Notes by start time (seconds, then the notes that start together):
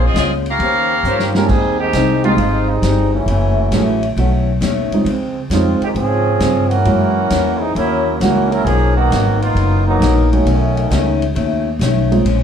Already playing: A#1
0.04 C4 F4 G#4 D#5
0.14 C#2 A#2 G#3 C4 C#4 F4, snare, hi-hat pedal, ride
0.18 G#4 D#5
0.46 C#4 G4 A#4 F5, ride
0.59 D#2 D#3 C#4 G4, ride
0.64 C5
1.03 G2 D#3 F3 A#3 C#4 G4, hi-hat pedal
1.07 C5
1.19 snare
1.35 G3 G#3 A#3 C4 C#4 D#4 F4 G4 A#4, snare
1.48 D#2 G#2 D#3 G3 C4 D#4 G#4, kick, crash
1.80 D#3 G#3 C4 G4
1.93 C2 G#2 G3 C4 D#4, snare, hi-hat pedal, ride
2.24 G#3 A#3 C4 D#4 F4 G4, ride
2.37 G#1 G#2 G3 C4, ride
2.41 D#4
2.69 G3 G#3 C4 D#4
2.82 G1 G#2 G3 C4 D#4, snare, hi-hat pedal, ride
3.13 E3 F#3 A3 C#4
3.26 F#1 F#2 E3 A3, ride
3.31 C#4
3.71 A1 F#2 E3 F#3 A3 C#4 E4 G#4, snare, hi-hat pedal, ride
3.75 C#4
4.03 ride
4.16 B1 B2 D#3 F#3 A3 B3 C#4 F#4, ride
4.61 D#2 B2 D#3 A3 C#4, snare, hi-hat pedal, ride
4.91 F3 G#3 C4 C#4 D#4, muted upright bass stroke, ride
5.05 C#2 C#3 F3 G#3, ride
5.09 C4
5.50 F2 C#3 F3 G#3 C4 C#4 D#4 F4, snare, hi-hat pedal, ride
5.81 D#3 G#3 C4 G4, muted upright bass stroke, ride
5.95 G#2 C#3 F3 G#3 C4 C#4 G#4, ride
6.40 G2 C#3 F3 G#3 C4, snare, hi-hat pedal, ride
6.70 E3 A#3 C#4 F#4, ride
6.85 F#2 E3 F#3 G#3 A#3 C#4 E4, ride
6.90 C#4
7.30 E2 F#2 E3 A#3 C#4, snare, hi-hat pedal, ride
7.61 E3 G#3 C4 D#4
7.75 D#2 F#2 E3 F#3 A#3 C#4 E4, ride
8.20 C#2 F#2 E3 F#3 G#3 A#3 C#4 F#4, snare, hi-hat pedal, ride
8.50 F#3 C#4 E4 A#4, ride
8.65 B1 B2 F3 F#3 A#3 C#4 D#4 G#4, ride
8.96 D#3 A#3 B3 F#4
9.10 G#1 B2 F#3 A#3, snare, hi-hat pedal, ride
9.15 D#4
9.42 A#3 B3 D#4 F4, ride
9.55 F#1 B2 F#3 A#3, ride
9.60 D#4
9.87 F#3 A#3 B3 D#4
10.00 A#1 B2 F#3 A#3 D#4, snare, hi-hat pedal, ride
10.32 D#3 F#3 A3 B3 C#4 D#4, ride
10.45 B1 B2 D#3 A3, ride
10.49 C#4
10.77 ride
10.90 C#2 B2 D#3 A3 C#4, snare, hi-hat pedal, ride
11.22 ride
11.34 D#2 B2 D#3 A3 C#4, ride
11.79 B1 B2 D#3 A3 C#4, snare, hi-hat pedal, ride
12.12 G#3 A#3 C4 C#4 F4, ride
12.25 A#1 A#2 F3 G#3 C#4, ride